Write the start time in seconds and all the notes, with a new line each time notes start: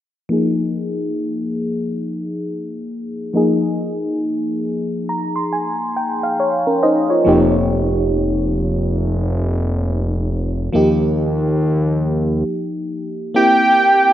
0.29 F3 A#3 D#4 G#4
3.33 F3 A#3 D#4 G#4
5.09 A#5
5.36 C6
5.53 G#5
5.96 G5
6.23 F5
6.40 C#5
6.67 C#4 A#4
6.83 D#4 C5 D#5
7.10 F4 C#5
7.25 F1 F3 A#3 D#4 G4
10.73 D#2 F3 A#3 D#4 G4
13.34 A#3 C4 E4 G4 G5